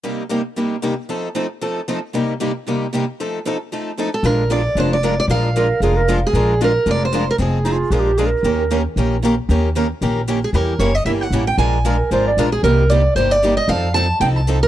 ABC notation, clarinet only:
X:1
M:4/4
L:1/16
Q:"Swing" 1/4=229
K:Bbmix
V:1 name="Clarinet"
z16 | z16 | z16 | z16 |
z16 | z4 B4 A2 B3 z3 | z16 | z4 E F3 A G3 A B3- |
B4- B z8 z3 | z16 | z16 | z4 B4 c2 d3 z3 |
z16 | z16 |]